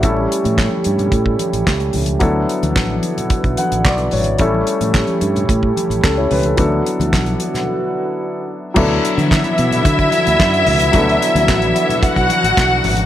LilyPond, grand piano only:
\new Staff \with { instrumentName = "Grand piano" } { \time 4/4 \key d \major \tempo 4 = 110 << { e''16 r2. r8. | r2 r8 fis''8 d''8 cis''8 | r2. <cis' a'>16 <e' cis''>16 b'16 <cis' a'>16~ | <cis' a'>16 r2. r8. |
r1 | r1 | } \\ { <g a cis' e' a'>1 | <fis b d' e' a'>1 | <g a cis' e' a'>1 | <fis b d' e' a'>1 |
<fis b d' e' a'>1 | <fis b d' e' a'>1 | } >> }